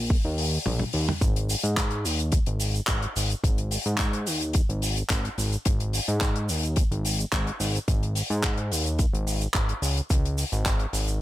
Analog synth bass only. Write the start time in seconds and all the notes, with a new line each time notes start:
Already playing: A#1
0.25 D#2
0.66 A#1
0.94 D#2
1.21 G#1
1.64 G#2
2.05 D#2
2.47 G#1
2.88 G#1
3.16 G#1
3.44 G#1
3.86 G#2
4.27 D#2
4.69 G#1
5.10 G#1
5.38 G#1
5.66 G#1
6.08 G#2
6.49 D#2
6.91 G#1
7.32 G#1
7.60 G#1
7.88 G#1
8.30 G#2
8.71 D#2
9.13 G#1
9.55 G#1
9.82 C#2
10.10 C#2
10.52 G#1
10.93 G#1